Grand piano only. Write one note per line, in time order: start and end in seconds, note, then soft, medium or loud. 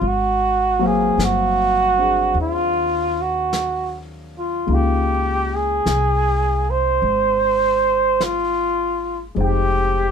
0.79 4.69 F#3 medium
0.79 4.67 A#3 soft
0.79 1.96 C4 soft
0.84 4.71 F5 medium
1.98 4.69 C4 soft
1.98 4.70 D4 soft
1.98 4.71 G#4 soft
4.66 9.33 G#3 soft
4.66 9.36 A#3 soft
4.66 9.37 D#4 soft
4.72 9.38 F4 soft
9.35 10.11 G#3 soft
9.35 10.11 C4 soft
9.35 10.11 D#4 soft
9.41 10.11 G5 medium